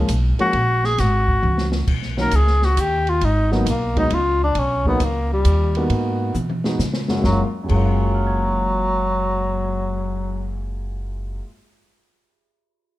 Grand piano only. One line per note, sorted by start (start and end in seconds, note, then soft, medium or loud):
0.39 0.52 F3 medium
0.39 0.52 G#3 medium
0.39 0.52 A#3 medium
0.39 0.53 C#4 medium
2.17 2.30 D#3 medium
2.17 2.30 F#3 medium
2.17 2.31 A#3 medium
2.17 2.31 C#4 medium
3.51 3.64 F#3 medium
3.51 3.65 A#3 medium
3.51 3.65 B3 medium
3.51 3.65 D#4 medium
3.97 4.09 F#3 medium
3.97 4.09 G#3 medium
3.97 4.10 B3 medium
3.97 4.09 D#4 medium
4.86 4.99 F#3 medium
4.86 4.99 A#3 medium
4.86 4.99 C#4 medium
4.86 4.99 D#4 medium
5.77 6.32 A#3 medium
5.77 6.32 B3 medium
5.77 6.32 D#4 soft
5.77 6.33 F#4 medium
6.64 6.77 G#3 soft
6.64 6.78 B3 soft
6.64 6.78 D#4 soft
6.64 6.78 F#4 medium
7.09 7.18 F#2 medium
7.09 7.22 G#3 medium
7.09 7.22 A#3 soft
7.09 7.22 C#4 soft
7.09 7.22 F#4 medium
7.19 7.40 F#2 medium
7.19 7.41 F#3 medium
7.25 7.43 G#3 soft
7.25 7.44 A#3 medium
7.32 7.46 F4 medium
7.63 11.40 F#2 medium
7.63 11.41 F#3 soft
7.69 11.43 G#3 soft
7.69 11.44 A#3 soft
7.69 11.39 G#4 soft
7.75 11.46 F4 medium
7.75 11.43 C#5 soft
7.85 11.47 F5 soft
7.94 11.51 G#5 soft
8.04 11.57 C#6 soft
8.14 11.62 F6 soft
8.27 11.68 G#6 soft